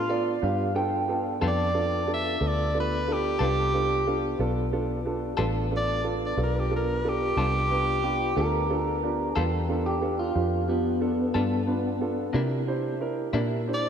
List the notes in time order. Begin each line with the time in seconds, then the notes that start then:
Already playing: A2 F4
0.08 B3 D4 F4 A4 D5
0.42 G2 B3 D4 F4 G4 F5
0.74 B3 D4 F4 A4 G5
1.08 B3 D4 F4 A4
1.40 F2 B3 D4 F4 A4
1.44 G3 D5
1.73 B3 D4 F4 A4
2.06 B3 D4 F4 A4
2.14 E5
2.40 D2 B3 D4 F4 A4
2.47 D5
2.74 B3 D4 F4 A4
2.80 B4
3.07 B3 D4 F4 A4
3.13 G4
3.39 C2 G3 B3 D4 F4 A4
3.73 B3 D4 F4 A4
4.06 B3 D4 F4 A4
4.39 B1 B3 D4 F4 A4
4.72 B3 D4 F4 A4
5.05 B3 D4 F4 A4
5.37 A1 G3 B3 D4 F4 A4
5.71 B3 D4 F4 A4
5.77 D5
6.04 B3 D4 F4 A4
6.26 D5
6.37 B1 B3 D4 F4 A4
6.43 A#4
6.59 G4
6.70 B3 D4 F4 A4
6.76 A#4
7.04 B3 D4 F4 A4
7.09 G4
7.36 C2 G3 B3 D4 F4 G4 A4
7.69 B3 D4 F4 B4
8.02 B3 D4 F4 G4 B4
8.36 D2 B3 D4 F4 A4 A#4
8.69 B3 D4 F4 A4
9.02 B3 D4 F4 G4
9.36 E2 G3 B3 D4 F4 G4 A4
9.68 B3 D4 F4 A4
9.86 G4
10.01 B3 D4 F4 A4
10.19 F4
10.34 F2 B3 D4 F4 G4
10.67 B3 D4 F4 G4
11.00 B3 D4 F4 A4
11.34 G2 G3 B3 D4 F4 A4
11.67 B3 D4 F4 B4
12.01 B3 D4 F4 A4
12.33 C3 A#3 D4 E4 G4 A#4
12.67 D4 E4 G4 C5
13.00 D4 E4 G4 A#4
13.33 A#2 C3 A#3 D4 E4 G4 A#4
13.67 D4 E4 G4 C5
13.74 D5